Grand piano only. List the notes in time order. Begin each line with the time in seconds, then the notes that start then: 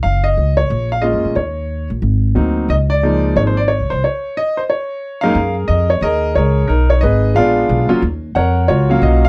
0.03 F5
0.24 D#5
0.57 C#5
0.92 F5
1.02 G#3 A#3 C#4 F4 D#5
1.36 C#5
2.35 F#3 A#3 C4 D#4
2.70 D#5
2.90 D5
3.03 F3 G#3 A#3 D#4
3.37 C#5
3.47 C5
3.57 D5
3.68 C#5
3.90 C5
4.04 C#5
4.37 D#5
4.57 C5
4.70 C#5
5.21 F#2 G#3 A#3 C#4 D#4 G#4 A#4 F5
5.68 D#5
5.90 C#5
6.02 G#4 A#4 D#5
6.35 G#4 A#4 C#5
6.68 D#4 A#4
6.90 C#5
7.01 G#4 B4 D#5
7.35 G#3 B3 D4 F4 G#4 D5 F5
7.89 F#3 A#3 C#4 F4
8.35 A#4 C#5 F#5
8.68 F4 F#4 C#5
8.89 F#3 A#3 C#4 F5
9.03 D#5
9.25 F5